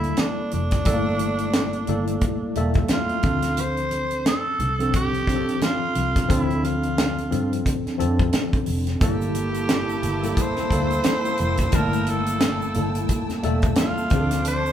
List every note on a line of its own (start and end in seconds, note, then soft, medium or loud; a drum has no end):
0.00 0.12 D2 medium
0.00 0.85 G3 medium
0.00 0.92 A#3 medium
0.00 0.21 E4 medium
0.00 0.86 E4 medium
0.00 0.86 A4 medium
0.00 3.26 A5 loud
0.00 closed hi-hat soft
0.17 0.53 D4 medium
0.17 snare medium
0.17 closed hi-hat medium
0.17 high conga medium
0.51 0.80 F1 medium
0.51 2.61 D4 loud
0.51 closed hi-hat medium
0.51 high conga medium
0.71 kick medium
0.71 snare soft
0.71 closed hi-hat medium
0.85 1.84 G1 loud
0.85 1.56 G3 loud
0.85 0.93 A3 medium
0.85 1.56 E4 medium
0.85 1.56 A4 loud
0.85 kick loud
0.85 closed hi-hat medium
0.85 muted conga soft
0.92 1.59 A#3 medium
1.19 closed hi-hat medium
1.19 muted conga soft
1.38 closed hi-hat soft
1.53 snare loud
1.53 closed hi-hat medium
1.53 high conga soft
1.73 closed hi-hat soft
1.87 2.16 G1 medium
1.87 2.36 G3 medium
1.87 2.37 A#3 medium
1.87 2.37 E4 medium
1.87 2.37 A4 medium
1.87 closed hi-hat medium
1.87 low conga medium
2.07 closed hi-hat soft
2.21 kick medium
2.21 closed hi-hat medium
2.21 low conga medium
2.43 muted fingered electric bass stroke soft
2.55 2.84 E1 medium
2.55 3.24 G3 medium
2.55 3.25 A#3 medium
2.55 3.23 A4 loud
2.55 3.24 E5 medium
2.55 closed hi-hat medium
2.55 muted conga soft
2.55 low conga medium
2.74 kick loud
2.74 closed hi-hat soft
2.88 snare loud
2.88 closed hi-hat medium
2.88 high conga medium
2.93 3.62 F4 loud
3.09 closed hi-hat soft
3.23 4.34 D2 medium
3.23 4.33 F3 medium
3.23 4.34 C4 medium
3.23 4.34 D4 medium
3.23 4.34 A4 medium
3.23 kick loud
3.23 closed hi-hat medium
3.23 high conga medium
3.42 snare soft
3.42 closed hi-hat medium
3.57 4.27 C5 loud
3.57 closed hi-hat medium
3.57 muted conga soft
3.77 closed hi-hat soft
3.91 closed hi-hat medium
3.91 muted conga soft
4.11 closed hi-hat medium
4.26 4.91 A4 loud
4.26 snare loud
4.26 closed hi-hat medium
4.26 high conga medium
4.59 5.44 C2 medium
4.59 closed hi-hat medium
4.59 low conga medium
4.79 5.14 F3 medium
4.79 5.15 C4 medium
4.79 5.15 D4 medium
4.79 5.15 A4 medium
4.79 closed hi-hat medium
4.93 5.59 G4 loud
4.93 kick medium
4.93 closed hi-hat medium
5.14 closed hi-hat soft
5.27 5.98 F3 medium
5.27 5.98 C4 medium
5.27 5.99 D4 medium
5.27 5.36 G4 medium
5.27 kick medium
5.27 closed hi-hat medium
5.36 6.02 A4 medium
5.48 closed hi-hat soft
5.61 6.34 F4 loud
5.61 snare medium
5.61 closed hi-hat medium
5.61 high conga medium
5.95 6.24 C2 medium
5.95 closed hi-hat medium
5.95 high conga medium
6.16 kick medium
6.16 snare soft
6.16 closed hi-hat medium
6.28 7.28 D2 loud
6.28 6.99 F3 medium
6.28 6.99 C4 medium
6.28 7.00 D4 medium
6.28 6.66 E4 medium
6.28 7.00 A4 loud
6.28 kick loud
6.28 closed hi-hat medium
6.28 muted conga soft
6.50 closed hi-hat soft
6.63 7.66 F4 medium
6.63 closed hi-hat medium
6.63 muted conga soft
6.83 closed hi-hat medium
6.98 snare loud
6.98 closed hi-hat medium
6.98 high conga medium
7.18 closed hi-hat soft
7.31 7.60 G2 medium
7.31 7.80 F3 medium
7.31 7.80 C4 medium
7.31 7.80 D4 medium
7.31 7.81 A4 medium
7.31 closed hi-hat medium
7.31 low conga medium
7.53 closed hi-hat medium
7.65 kick medium
7.65 closed hi-hat loud
7.65 low conga medium
7.87 muted fingered electric bass stroke soft
7.87 snare soft
7.87 closed hi-hat soft
7.98 8.28 F2 medium
7.98 8.69 F3 medium
7.98 8.69 C4 medium
7.98 8.70 D4 medium
7.98 8.70 A4 medium
7.98 closed hi-hat medium
7.98 muted conga soft
7.98 low conga medium
8.19 kick loud
8.19 closed hi-hat soft
8.33 snare medium
8.33 closed hi-hat medium
8.33 high conga medium
8.53 kick medium
8.53 closed hi-hat soft
8.53 high conga soft
8.66 8.95 F1 medium
8.66 open hi-hat medium
8.66 high conga medium
8.87 snare soft
8.87 closed hi-hat medium
9.00 9.99 G1 medium
9.00 13.73 E3 medium
9.00 9.84 G3 medium
9.00 9.85 A#3 medium
9.00 13.73 A#3 medium
9.00 14.07 A#3 medium
9.00 13.73 E4 medium
9.00 9.85 E4 medium
9.00 9.86 A4 medium
9.00 14.07 G5 medium
9.00 11.70 A5 medium
9.00 14.07 E6 medium
9.00 kick loud
9.00 closed hi-hat medium
9.00 muted conga soft
9.00 shaker medium
9.04 10.43 G4 loud
9.21 closed hi-hat soft
9.21 shaker soft
9.35 closed hi-hat medium
9.35 muted conga soft
9.35 shaker soft
9.54 closed hi-hat medium
9.54 shaker medium
9.69 snare loud
9.69 closed hi-hat medium
9.69 high conga medium
9.69 shaker medium
9.89 shaker soft
10.03 10.31 G1 medium
10.03 closed hi-hat medium
10.03 low conga medium
10.03 shaker medium
10.23 10.58 G3 medium
10.23 10.58 A#3 medium
10.23 10.58 E4 medium
10.23 10.58 A4 medium
10.23 closed hi-hat medium
10.23 shaker soft
10.37 kick medium
10.37 closed hi-hat medium
10.37 shaker medium
10.41 11.77 C5 loud
10.57 muted fingered electric bass stroke soft
10.57 snare soft
10.57 closed hi-hat soft
10.57 shaker soft
10.71 10.98 D2 medium
10.71 11.41 G3 medium
10.71 11.41 A#3 medium
10.71 11.42 E4 medium
10.71 11.42 A4 medium
10.71 kick medium
10.71 closed hi-hat medium
10.71 muted conga soft
10.90 closed hi-hat soft
10.90 shaker medium
11.04 snare loud
11.04 closed hi-hat medium
11.04 high conga medium
11.04 shaker medium
11.25 closed hi-hat soft
11.25 shaker soft
11.37 11.67 F1 medium
11.37 closed hi-hat medium
11.37 high conga medium
11.37 shaker soft
11.57 kick medium
11.57 snare soft
11.57 closed hi-hat medium
11.57 shaker soft
11.72 12.71 G1 loud
11.72 12.43 G3 loud
11.72 11.81 A3 medium
11.72 12.44 E4 medium
11.72 12.11 A#4 loud
11.72 14.08 A5 medium
11.72 12.44 A5 loud
11.72 kick loud
11.72 closed hi-hat medium
11.72 muted conga soft
11.72 shaker medium
11.80 12.47 A#3 medium
11.93 closed hi-hat soft
11.93 shaker soft
12.07 13.10 A4 medium
12.07 closed hi-hat medium
12.07 muted conga soft
12.07 shaker soft
12.26 closed hi-hat soft
12.26 shaker medium
12.40 snare loud
12.40 closed hi-hat medium
12.40 high conga medium
12.40 shaker medium
12.62 shaker soft
12.74 13.03 G1 medium
12.74 13.23 G3 medium
12.74 13.24 A#3 medium
12.74 13.24 E4 medium
12.74 13.24 A4 medium
12.74 closed hi-hat medium
12.74 low conga medium
12.74 shaker soft
12.95 closed hi-hat medium
12.95 shaker soft
13.09 kick medium
13.09 closed hi-hat medium
13.09 low conga medium
13.09 shaker medium
13.29 muted fingered electric bass stroke medium
13.29 snare soft
13.29 closed hi-hat soft
13.29 shaker soft
13.43 13.71 E1 medium
13.43 14.11 G3 medium
13.43 14.11 A#3 medium
13.43 14.12 A4 loud
13.43 14.11 E5 medium
13.43 closed hi-hat medium
13.43 muted conga soft
13.43 low conga medium
13.62 kick loud
13.62 closed hi-hat soft
13.62 shaker medium
13.75 snare loud
13.75 closed hi-hat medium
13.75 high conga medium
13.75 shaker medium
13.81 14.43 F4 loud
13.98 shaker soft
14.10 14.72 D2 medium
14.10 14.72 F3 medium
14.10 14.72 C4 medium
14.10 14.72 D4 medium
14.10 14.20 G#4 medium
14.10 14.72 C5 medium
14.10 14.72 D5 medium
14.10 14.72 A5 medium
14.10 14.72 D6 medium
14.10 kick loud
14.10 closed hi-hat medium
14.10 high conga medium
14.10 shaker medium
14.20 14.72 A4 medium
14.31 snare soft
14.31 closed hi-hat medium
14.31 shaker soft
14.45 14.72 C5 loud
14.45 closed hi-hat loud
14.45 muted conga soft
14.45 shaker medium
14.66 shaker soft